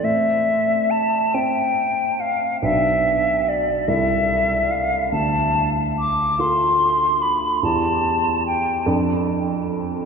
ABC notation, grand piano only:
X:1
M:6/8
L:1/8
Q:3/8=48
K:Am
V:1 name="Grand piano"
A,,3 [Cc]3 | [B,,,DB]3 [C,,EA]3 | D,,3 [FA]3 | [E,,EG]3 [F,,DA]3 |]